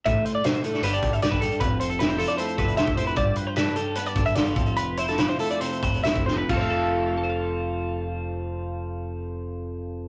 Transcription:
0.06 0.22 A1 medium
0.06 0.44 A2 medium
0.06 0.25 E5 medium
0.06 kick medium
0.06 closed hi-hat medium
0.25 0.34 C5 medium
0.25 closed hi-hat medium
0.35 0.44 D5 medium
0.44 0.64 B2 medium
0.44 0.65 C5 medium
0.44 snare loud
0.44 closed hi-hat medium
0.54 closed hi-hat soft
0.64 0.83 A2 medium
0.64 0.83 A4 medium
0.64 closed hi-hat medium
0.74 snare soft
0.82 0.98 G1 medium
0.82 1.59 G2 medium
0.82 1.42 G3 medium
0.82 1.59 B3 soft
0.82 1.22 D4 medium
0.82 1.60 G4 medium
0.82 0.93 B4 medium
0.82 closed hi-hat medium
0.93 1.13 D5 medium
1.03 1.26 G1 medium
1.03 kick medium
1.03 closed hi-hat medium
1.13 1.22 E5 medium
1.13 closed hi-hat soft
1.22 1.59 D4 medium
1.22 1.31 D5 medium
1.22 snare loud
1.22 closed hi-hat medium
1.31 1.48 E1 medium
1.31 1.41 B4 medium
1.31 kick medium
1.31 snare soft
1.41 1.59 G3 medium
1.41 1.61 A4 medium
1.41 closed hi-hat medium
1.51 closed hi-hat soft
1.60 2.23 F1 medium
1.60 3.17 F2 medium
1.60 1.80 B4 medium
1.60 kick medium
1.60 closed hi-hat medium
1.80 1.90 C5 medium
1.80 closed hi-hat medium
1.90 2.00 A4 medium
1.90 closed hi-hat soft
1.99 2.96 E4 soft
1.99 2.09 B4 medium
1.99 snare loud
1.99 closed hi-hat medium
2.09 2.19 C5 medium
2.09 closed hi-hat soft
2.18 3.76 F3 medium
2.18 2.29 A4 medium
2.18 open hi-hat medium
2.28 2.37 D5 medium
2.28 closed hi-hat soft
2.38 3.17 A3 medium
2.38 2.58 C5 medium
2.38 closed hi-hat medium
2.48 closed hi-hat soft
2.58 2.82 F1 medium
2.58 3.17 C3 medium
2.58 2.77 B4 medium
2.58 kick medium
2.58 closed hi-hat medium
2.68 closed hi-hat soft
2.77 3.15 C5 medium
2.77 2.97 E5 medium
2.77 snare loud
2.77 closed hi-hat medium
2.87 3.11 F1 medium
2.87 kick medium
2.87 closed hi-hat soft
2.97 3.15 E4 medium
2.97 3.07 C5 medium
2.97 closed hi-hat medium
3.07 3.17 B4 medium
3.07 closed hi-hat soft
3.16 3.32 G1 medium
3.16 4.53 G2 medium
3.16 3.37 D5 medium
3.16 kick medium
3.16 closed hi-hat medium
3.36 3.47 B4 medium
3.36 closed hi-hat medium
3.47 3.56 C5 medium
3.56 4.54 D4 medium
3.56 3.76 B4 medium
3.56 snare loud
3.56 closed hi-hat medium
3.66 closed hi-hat soft
3.76 4.53 G3 medium
3.76 3.96 A4 medium
3.76 closed hi-hat medium
3.95 4.54 B3 medium
3.95 4.07 B4 medium
3.95 closed hi-hat medium
4.06 4.25 D5 medium
4.06 closed hi-hat soft
4.15 4.40 G1 medium
4.15 4.54 D3 medium
4.15 kick medium
4.15 closed hi-hat medium
4.26 4.35 E5 medium
4.26 closed hi-hat soft
4.35 5.83 F4 medium
4.35 4.45 D5 medium
4.35 snare loud
4.35 closed hi-hat medium
4.45 4.54 G1 medium
4.45 4.56 B4 medium
4.45 closed hi-hat soft
4.56 5.22 F1 medium
4.56 6.26 F2 medium
4.56 4.76 A4 medium
4.56 kick loud
4.56 closed hi-hat medium
4.66 closed hi-hat soft
4.76 4.98 B4 medium
4.76 closed hi-hat medium
4.97 6.04 E4 medium
4.97 5.07 C5 medium
4.97 closed hi-hat medium
5.08 5.19 A4 medium
5.08 snare soft
5.08 closed hi-hat soft
5.18 6.54 F3 medium
5.18 5.29 B4 medium
5.18 snare loud
5.18 closed hi-hat medium
5.28 5.39 C5 medium
5.28 closed hi-hat soft
5.39 6.60 A3 medium
5.39 5.50 A4 medium
5.39 open hi-hat medium
5.50 5.61 D5 medium
5.50 closed hi-hat soft
5.61 6.26 C3 medium
5.61 5.83 C5 medium
5.61 closed hi-hat medium
5.72 closed hi-hat soft
5.83 6.09 F1 medium
5.83 6.03 B4 medium
5.83 6.24 C5 medium
5.83 kick medium
5.83 closed hi-hat soft
5.94 closed hi-hat soft
6.04 6.24 E4 medium
6.04 6.26 E5 medium
6.04 snare loud
6.04 closed hi-hat medium
6.16 6.42 F1 medium
6.16 kick medium
6.16 closed hi-hat soft
6.26 6.49 F2 medium
6.26 6.37 C5 medium
6.26 snare medium
6.38 6.49 B4 medium
6.49 10.08 F1 medium
6.49 10.08 F2 medium
6.49 10.08 F4 medium
6.49 kick medium
6.49 crash medium
6.53 10.08 F3 medium
6.53 10.08 A4 medium
6.57 7.17 A3 medium
6.57 6.61 C5 medium
6.61 10.08 F5 medium
6.70 7.18 A4 medium
7.18 10.08 A4 medium
7.24 10.08 C5 medium
7.30 10.08 F5 medium

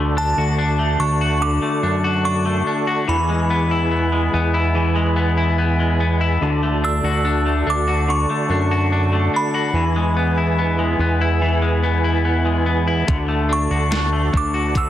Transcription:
0.00 0.34 D2 loud
0.00 1.40 D3 medium
0.00 0.78 A3 soft
0.00 3.05 F#4 medium
0.00 3.05 A4 soft
0.00 3.05 D5 soft
0.00 3.05 A5 medium
0.17 0.57 D4 medium
0.17 1.03 A5 medium
0.38 0.97 D2 medium
0.38 1.20 F#4 soft
0.59 0.99 D4 medium
0.79 1.61 A3 soft
0.99 1.59 D2 medium
0.99 1.82 D4 soft
0.99 1.43 C#6 medium
1.21 2.03 F#4 medium
1.41 3.07 D3 medium
1.41 2.28 D6 medium
1.62 2.44 A3 soft
1.83 2.63 F#2 medium
1.83 2.24 D4 medium
2.04 2.86 F#4 medium
2.25 2.66 D4 medium
2.25 3.11 C#6 medium
2.46 3.17 A3 soft
2.67 3.17 D4 soft
2.87 3.17 F#4 medium
3.08 4.29 E2 medium
3.08 4.74 E3 medium
3.08 6.39 E4 medium
3.08 6.39 G#4 medium
3.08 6.39 B4 medium
3.08 6.39 G#5 medium
3.08 5.55 B5 medium
3.29 4.11 G#3 medium
3.50 3.90 B3 medium
3.71 4.53 E4 medium
3.91 4.32 B3 soft
4.12 4.94 G#3 soft
4.34 6.38 E2 medium
4.34 5.15 B3 medium
4.54 5.36 E4 medium
4.75 6.42 E3 medium
4.95 5.78 G#3 medium
5.16 5.57 B3 medium
5.37 6.20 E4 medium
5.58 5.99 B3 medium
5.79 6.50 G#3 soft
6.00 6.50 B3 medium
6.21 6.50 E4 medium
6.41 7.01 D2 medium
6.41 8.07 D3 medium
6.41 9.72 F#4 medium
6.41 9.71 A4 medium
6.41 9.72 D5 medium
6.41 9.72 A5 medium
6.63 7.45 A3 medium
6.84 7.24 D4 medium
6.84 7.70 E6 medium
7.03 7.63 D2 medium
7.03 7.87 F#4 medium
7.25 7.65 D4 medium
7.46 8.29 A3 soft
7.67 8.26 D2 medium
7.67 8.49 D4 medium
7.67 8.11 D6 medium
7.88 8.70 F#4 medium
8.08 9.75 D3 medium
8.08 9.38 C#6 medium
8.30 9.12 A3 medium
8.49 9.29 F#2 loud
8.49 8.91 D4 medium
8.71 9.53 F#4 medium
8.92 9.33 D4 medium
9.13 9.83 A3 soft
9.34 9.84 D4 soft
9.34 10.14 B5 medium
9.54 9.83 F#4 medium
9.73 10.95 E2 medium
9.73 11.41 E3 medium
9.73 13.04 E4 medium
9.73 13.05 G#4 soft
9.73 13.05 B4 medium
9.73 13.05 G#5 medium
9.96 10.78 G#3 medium
10.17 10.57 B3 medium
10.38 11.20 E4 soft
10.58 10.99 B3 medium
10.79 11.61 G#3 soft
10.99 13.04 E2 medium
10.99 11.82 B3 medium
11.21 12.03 E4 medium
11.42 13.08 E3 medium
11.62 12.44 G#3 soft
11.83 12.24 B3 medium
12.04 12.86 E4 medium
12.25 12.65 B3 soft
12.45 13.17 G#3 medium
12.66 13.16 B3 soft
12.88 13.17 E4 medium
13.07 13.68 D2 loud
13.07 14.74 D3 medium
13.07 14.89 F#4 medium
13.07 14.89 A4 medium
13.07 14.89 D5 soft
13.07 14.89 A5 medium
13.07 kick loud
13.07 closed hi-hat medium
13.28 14.11 A3 medium
13.49 13.90 D4 medium
13.49 14.37 C#6 medium
13.71 14.30 D2 medium
13.71 14.53 F#4 medium
13.91 14.32 D4 medium
13.91 snare loud
13.91 closed hi-hat medium
14.13 14.89 A3 soft
14.33 14.89 D2 loud
14.33 14.89 D4 medium
14.33 14.74 D6 medium
14.33 kick medium
14.54 14.89 F#4 medium
14.75 14.89 D3 medium
14.75 14.89 E6 medium
14.75 kick medium
14.75 closed hi-hat medium

